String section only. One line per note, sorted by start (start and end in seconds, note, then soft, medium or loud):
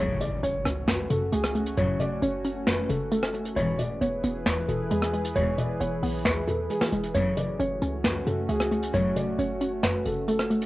0.00 0.30 A2 medium
0.00 0.30 C#3 loud
0.00 0.30 F#3 loud
1.77 2.09 A2 loud
1.77 2.09 C#3 medium
1.77 2.09 F#3 loud
3.56 3.88 G#2 loud
3.56 3.88 B2 medium
3.56 3.88 E3 loud
5.36 5.67 G#2 loud
5.36 5.67 B2 loud
5.36 5.68 E3 loud
7.15 7.47 A2 medium
7.15 7.47 C#3 loud
7.15 7.47 F#3 loud
8.94 9.26 A2 medium
8.94 9.26 C#3 medium
8.94 9.26 F#3 loud